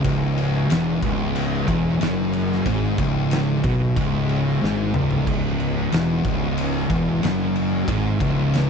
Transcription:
0.04 fingered electric bass C#1, distorted electric guitar C#2, kick, ride
0.37 ride
0.69 fingered electric bass E1, distorted electric guitar E2, snare, ride
1.03 fingered electric bass C#1, distorted electric guitar C#2, kick, ride
1.35 ride
1.68 fingered electric bass E1, distorted electric guitar E2, kick, ride
2.01 fingered electric bass F#1, distorted electric guitar F#2, snare, ride
2.33 ride
2.52 snare
2.66 fingered electric bass G#1, distorted electric guitar G#2, kick, ride
2.98 fingered electric bass C#1, distorted electric guitar C#2, kick, ride
3.31 snare, ride
3.64 fingered electric bass B1, distorted electric guitar B2, kick, ride
3.96 fingered electric bass C#1, distorted electric guitar C#2, kick, ride
4.29 ride
4.62 fingered electric bass G#1, distorted electric guitar G#2, snare
4.94 fingered electric bass C#1, distorted electric guitar C#2, mid tom
5.11 floor tom
5.27 fingered electric bass C#1, distorted electric guitar C#2, kick, crash
5.60 ride
5.92 fingered electric bass E1, distorted electric guitar E2, snare, ride
6.25 fingered electric bass C#1, distorted electric guitar C#2, kick, ride
6.58 ride
6.90 fingered electric bass E1, distorted electric guitar E2, kick, ride
7.23 fingered electric bass F#1, distorted electric guitar F#2, snare, ride
7.56 ride
7.88 fingered electric bass G#1, distorted electric guitar G#2, kick, ride
8.20 fingered electric bass C#1, distorted electric guitar C#2, kick, ride
8.54 snare, ride

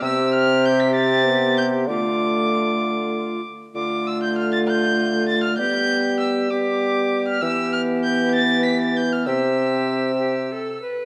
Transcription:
0.02 bassoon C3, trombone C4, recorder G4, violin E6
0.34 violin F6
0.65 violin G6
0.80 violin B6
0.95 violin A6
1.26 trombone B3
1.58 violin G6
1.88 bassoon D3, trombone A3, recorder F4, violin D6
3.74 bassoon D3, trombone A3, recorder F4, violin D6
4.07 violin E6
4.23 violin G6
4.38 violin F6
4.52 violin A6
4.68 violin G6
5.29 violin A6
5.44 violin F6
5.58 bassoon G3, trombone B3, recorder G4, violin G6
6.20 violin E6
6.50 trombone B3, recorder G4, violin D6
7.28 violin F6
7.41 bassoon E3, trombone B3, recorder G4, violin E6
7.73 violin F6
8.04 violin G6
8.35 violin A6
8.65 violin B6
8.81 violin A6
8.96 violin G6
9.13 violin F6
9.26 bassoon C3, trombone C4, recorder G4, violin E6
10.19 recorder G4
10.52 recorder A4
10.82 recorder B4

